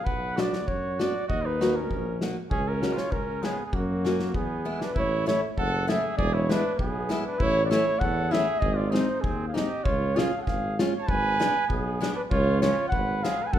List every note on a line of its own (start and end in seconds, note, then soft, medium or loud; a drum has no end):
0.04 0.69 B1 medium
0.04 0.38 B4 medium
0.04 0.41 F#5 medium
0.04 kick medium
0.37 0.51 B3 soft
0.37 0.51 D4 soft
0.37 0.63 F#4 medium
0.37 0.51 F#4 medium
0.37 0.69 D5 medium
0.37 snare medium
0.53 snare medium
0.63 0.95 F#4 medium
0.67 1.07 F#2 medium
0.67 1.02 C#5 medium
0.67 kick medium
0.95 1.26 F#4 medium
0.95 1.13 F#4 medium
1.00 1.13 B3 soft
1.00 1.13 D4 medium
1.00 1.28 D5 medium
1.00 snare medium
1.27 1.91 D#2 medium
1.27 1.44 F#4 medium
1.27 1.47 D#5 medium
1.27 kick medium
1.42 1.77 D#4 medium
1.42 1.77 B4 medium
1.61 1.74 A#3 medium
1.61 1.74 D#4 soft
1.61 1.74 F#4 medium
1.61 snare medium
1.76 2.22 C#4 medium
1.76 2.22 A#4 medium
1.90 2.29 A#1 medium
1.90 kick medium
2.21 2.35 A#3 medium
2.21 2.35 D#4 medium
2.21 2.35 F#4 medium
2.21 snare medium
2.50 2.91 C#2 loud
2.50 2.65 C#4 medium
2.50 2.69 G#4 loud
2.50 kick medium
2.65 2.94 C#4 medium
2.65 2.99 A#4 medium
2.83 2.96 G#3 medium
2.83 2.96 C#4 medium
2.83 2.96 F#4 medium
2.83 snare medium
2.93 3.13 F4 medium
2.98 3.14 C#5 medium
2.98 snare medium
3.11 3.51 C#2 medium
3.11 3.44 C#4 medium
3.11 3.46 A#4 medium
3.11 kick medium
3.42 3.56 G#3 medium
3.42 3.65 B3 medium
3.42 3.56 C#4 soft
3.42 3.57 F4 medium
3.42 3.65 G#4 medium
3.42 snare medium
3.65 3.75 B3 soft
3.65 3.76 G#4 medium
3.73 4.36 F#2 loud
3.73 4.34 A#3 medium
3.73 4.35 F#4 medium
3.73 kick medium
4.05 4.18 A#3 medium
4.05 4.18 C#4 soft
4.05 4.18 F#4 medium
4.05 snare medium
4.19 snare soft
4.34 4.74 E2 medium
4.34 4.82 B3 medium
4.34 4.86 G#4 medium
4.34 kick medium
4.65 4.79 G#3 medium
4.65 4.79 B3 medium
4.65 4.79 E4 medium
4.80 4.93 D4 medium
4.80 snare medium
4.85 4.98 B4 medium
4.94 5.35 A1 medium
4.94 5.25 E4 medium
4.94 kick medium
4.98 5.27 C#5 loud
5.26 5.40 A3 medium
5.26 5.41 C#4 medium
5.26 5.41 E4 medium
5.26 5.41 C#5 medium
5.26 snare medium
5.26 hi-hat pedal soft
5.57 5.97 F#1 medium
5.57 5.88 A4 medium
5.57 5.88 F#5 medium
5.57 kick medium
5.88 6.02 A3 medium
5.88 6.02 C#4 medium
5.88 6.02 E4 medium
5.88 6.16 G#4 medium
5.88 6.17 E5 medium
5.88 snare medium
5.88 hi-hat pedal soft
6.17 6.58 E1 loud
6.17 6.35 G#4 loud
6.17 6.37 D5 medium
6.17 kick medium
6.34 6.51 E4 medium
6.34 6.53 C#5 medium
6.49 6.63 G#3 medium
6.49 6.63 B3 medium
6.49 6.75 D4 medium
6.49 6.63 E4 medium
6.49 6.80 B4 medium
6.49 snare medium
6.49 hi-hat pedal soft
6.75 7.19 B1 medium
6.75 7.20 B3 medium
6.75 kick medium
6.80 7.23 G#4 medium
7.09 7.23 G#3 medium
7.09 7.23 B3 medium
7.09 7.23 E4 medium
7.09 snare medium
7.09 hi-hat pedal soft
7.25 7.40 D4 medium
7.25 7.44 B4 medium
7.38 7.79 A1 loud
7.38 7.64 E4 loud
7.38 kick medium
7.43 7.66 C#5 loud
7.65 7.72 F#4 soft
7.65 7.72 D5 medium
7.70 7.84 A3 medium
7.70 7.85 C#4 medium
7.70 8.01 E4 medium
7.70 7.84 E4 medium
7.70 8.01 C#5 loud
7.70 snare medium
7.70 hi-hat pedal medium
8.00 8.41 E2 medium
8.00 8.32 A4 medium
8.00 8.34 F#5 medium
8.00 kick medium
8.31 8.45 A3 medium
8.31 8.45 C#4 soft
8.31 8.45 E4 medium
8.31 8.60 G#4 medium
8.31 8.61 E5 medium
8.31 snare medium
8.31 hi-hat pedal soft
8.60 9.02 G#1 loud
8.60 8.77 G#4 medium
8.60 8.78 D#5 medium
8.60 kick medium
8.75 8.92 F4 medium
8.75 8.93 D5 medium
8.91 9.06 G#3 soft
8.91 9.06 C4 medium
8.91 9.24 D#4 medium
8.91 9.06 D#4 medium
8.91 9.22 C5 medium
8.91 snare medium
8.91 hi-hat pedal soft
9.21 9.63 D#2 medium
9.21 9.48 C4 medium
9.21 9.47 G#4 medium
9.21 kick medium
9.48 9.55 G#4 soft
9.48 9.57 F5 medium
9.54 9.68 G#3 soft
9.54 9.68 C4 medium
9.54 9.68 D#4 medium
9.54 9.86 G4 medium
9.54 9.86 D#5 medium
9.54 snare medium
9.54 hi-hat pedal soft
9.84 10.26 C#2 medium
9.84 10.17 F4 medium
9.84 10.20 C#5 loud
9.84 kick medium
10.16 10.30 G#3 medium
10.16 10.30 C#4 soft
10.16 10.30 F4 medium
10.16 10.37 G#4 medium
10.16 10.41 F5 medium
10.16 snare medium
10.16 hi-hat pedal soft
10.37 10.45 A4 soft
10.42 10.77 G#4 medium
10.42 10.48 F#5 medium
10.46 10.87 G#1 medium
10.46 10.79 F5 medium
10.46 kick medium
10.46 snare soft
10.79 10.92 G#3 medium
10.79 10.92 C#4 soft
10.79 10.92 F4 medium
10.79 snare medium
10.79 hi-hat pedal soft
10.97 11.09 C#5 medium
10.97 11.12 A5 medium
11.07 11.48 G#1 medium
11.07 11.67 B4 loud
11.07 11.70 G#5 loud
11.07 kick medium
11.40 11.53 G#3 medium
11.40 11.53 B3 soft
11.40 11.53 D4 medium
11.40 snare medium
11.40 hi-hat pedal medium
11.68 12.09 B1 medium
11.68 12.12 B3 medium
11.68 12.13 G#4 medium
11.68 kick medium
12.01 12.14 G#3 medium
12.01 12.15 B3 medium
12.01 12.15 D4 medium
12.01 snare medium
12.01 hi-hat pedal soft
12.15 12.22 D4 medium
12.15 12.22 B4 medium
12.30 12.70 C#2 loud
12.30 12.60 F4 medium
12.30 12.61 C#5 medium
12.30 kick medium
12.61 12.75 F3 medium
12.61 12.75 G#3 soft
12.61 12.76 C#4 medium
12.61 12.90 F4 medium
12.61 12.88 C#5 medium
12.61 snare medium
12.61 hi-hat pedal soft
12.89 13.31 G#1 medium
12.89 13.26 B4 medium
12.89 13.24 F#5 medium
12.89 kick medium
13.23 13.37 F3 medium
13.23 13.37 G#3 medium
13.23 13.37 C#4 medium
13.23 13.44 G#4 medium
13.23 13.48 F5 medium
13.23 snare medium
13.23 hi-hat pedal soft
13.43 13.53 B4 soft
13.43 13.55 G#5 medium
13.51 13.59 F#2 loud
13.51 13.59 A4 medium
13.51 13.59 F#5 medium
13.51 kick medium